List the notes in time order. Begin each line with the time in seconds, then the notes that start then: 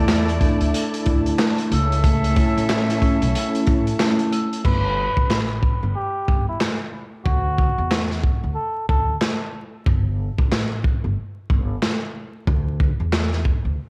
Already playing: E2 A3 E4 A4 D5 A5
0.08 A3, snare, clap
0.29 closed hi-hat
0.41 D4, kick, closed hi-hat
0.61 D2, closed hi-hat
0.74 closed hi-hat
0.94 closed hi-hat
1.04 D2 E4, kick, closed hi-hat
1.26 closed hi-hat
1.39 A3, snare, clap
1.58 closed hi-hat
1.71 C#2 C#4 E4 A4 C#5 E5 E6, closed hi-hat
1.92 closed hi-hat
2.04 A3, kick, closed hi-hat
2.24 closed hi-hat
2.36 E4, kick, closed hi-hat
2.57 A1, closed hi-hat
2.69 snare, clap
2.89 snare, closed hi-hat
3.02 C#4, kick, closed hi-hat
3.22 B1, closed hi-hat
3.35 closed hi-hat
3.55 closed hi-hat
3.67 A1 E4, kick, closed hi-hat
3.87 closed hi-hat
4.00 A3, snare, clap
4.19 closed hi-hat
4.32 E6, closed hi-hat
4.53 closed hi-hat
4.65 G1 B4, kick, crash
5.17 A1, kick
5.30 snare, clap
5.63 kick
5.83 G1
5.96 G4
6.28 G1, kick
6.49 E4
6.61 snare, clap
7.25 D2 F#4, kick
7.58 kick
7.78 E2
7.91 snare, clap
8.11 snare
8.23 kick
8.43 D2
8.55 A4
8.88 D2 A4, kick
9.21 snare, clap
9.86 G1, kick
10.38 A1, kick
10.52 snare, clap
10.84 kick
11.04 G1
11.50 G1, kick
11.82 snare, clap
12.47 D2, kick
12.80 kick
13.00 E2
13.13 snare, clap
13.32 snare
13.45 kick
13.65 D2